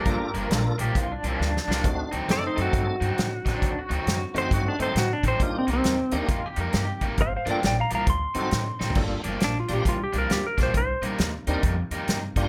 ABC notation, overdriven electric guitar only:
X:1
M:4/4
L:1/8
Q:"Swing" 1/4=135
K:Gm
V:1 name="Overdriven electric guitar" clef=bass
[G,,F,B,D] [G,,F,B,D] z [G,,F,B,D] z [G,,F,B,D] z [G,,F,B,D] | z [D,^F,CE] z [D,F,CE] z [D,F,CE] z [D,F,CE] | z [D,^F,CE] z [D,F,CE] z [D,F,CE] z [D,F,CE] | z [C,G,B,E] z [C,G,B,E] z [C,G,B,E] z [C,G,B,E] |
z [G,,F,B,D] z [G,,F,B,D] z [D,^F,CE] z [D,F,CE] | z [G,,F,B,D] z [G,,F,B,D] z [G,,F,B,D] z [G,,F,B,D] | z [C,G,B,E] z [C,G,B,E] z [C,G,B,E] z [C,G,B,E] |]